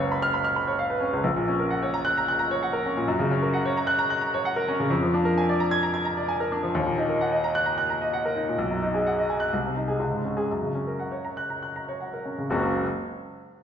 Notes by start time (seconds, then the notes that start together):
Already playing: F#1 C#2 C#4 B4 F5
0.00 C#5
0.12 B5
0.22 F6
0.34 B5
0.44 F6
0.56 B5
0.67 C#5
0.79 F5
0.90 B4
1.01 C#4
1.13 C#2
1.24 A#1
1.36 A#2
1.48 C#4
1.59 A#4
1.70 F#5
1.82 C#5
1.94 A#5
2.05 F#6
2.17 A#5
2.28 F#6
2.39 A#5
2.51 C#5
2.63 F#5
2.73 A#4
2.86 C#4
2.97 A#2
3.08 F#2
3.19 C#3
3.31 C#4
3.42 A#4
3.53 F#5
3.65 C#5
3.77 A#5
3.87 F#6
3.99 A#5
4.10 F#6
4.21 A#5
4.34 C#5
4.45 F#5
4.56 A#4
4.68 C#4
4.80 C#3
4.90 F2
5.02 F3
5.14 D4
5.25 A#4
5.38 G#5
5.49 D5
5.60 A#5
5.71 G#6
5.83 A#5
5.94 G#6
6.05 A#5
6.17 D5
6.28 G#5
6.40 A#4
6.52 D4
6.63 F3
6.75 D#2
6.87 A#2
6.98 D#4
7.09 A#4
7.21 F#5
7.32 D#5
7.44 A#5
7.55 F#6
7.66 A#5
7.78 F#6
7.90 A#5
8.02 D#5
8.13 F#5
8.25 A#4
8.36 D#4
8.49 A#2
8.58 B1
8.71 F#2
8.83 D#4
8.94 G#4
9.06 F#5
9.19 D#5
9.30 G#5
9.40 F#6
9.53 C2
9.65 C3
9.77 D#4
9.88 G#4
10.00 C#2
10.11 G#2
10.24 C#4
10.37 G#4
10.51 F#2
10.62 C#3
10.75 C#4
10.87 A#4
10.99 F#5
11.11 C#5
11.25 A#5
11.37 F#6
11.50 A#5
11.63 F#6
11.76 A#5
11.88 C#5
12.01 F#5
12.13 A#4
12.26 C#4
12.38 C#3
12.50 F#1 C#2 F#3 A#3 C#4 F#4